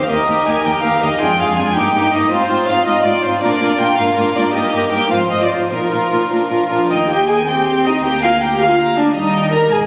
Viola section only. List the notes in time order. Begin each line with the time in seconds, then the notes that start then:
0.10 D#3 D#4
0.29 D#3 D#4
0.48 D#3 D#4
0.66 D#3 D#4
0.84 D#3 D#4
1.02 D#3 D#4
1.21 G#3 D4
1.39 G#3 D4
1.58 G#3 D4
1.77 A#3 D#4
1.94 A#3 D#4
2.13 A#3 D#4
2.31 C4 D#4
2.49 C4 D#4
2.67 C4 D#4
2.86 C4 D#4
3.04 C4 D#4
3.23 C4 D#4
3.42 A#3 D4
3.60 A#3 D4
3.79 A#3 D4
3.98 A#3 D4
4.16 A#3 D4
4.35 A#3 D4
4.54 A#3 D#4
4.73 A#3 D#4
4.92 A#3 D#4
5.11 F3 C4
5.31 F3 C4
5.52 F3 C4
5.72 F3 D#4
5.92 F3 D#4
6.12 F3 D#4
6.32 F3 D4
6.51 F3 D4
6.71 F3 D4
6.91 D#4
7.10 G4
7.29 G#4
7.48 G4
7.86 D#4
8.04 G4
8.23 F4
8.41 G4
8.60 F4
8.97 D4
9.15 D#4
9.52 A#4
9.71 G#4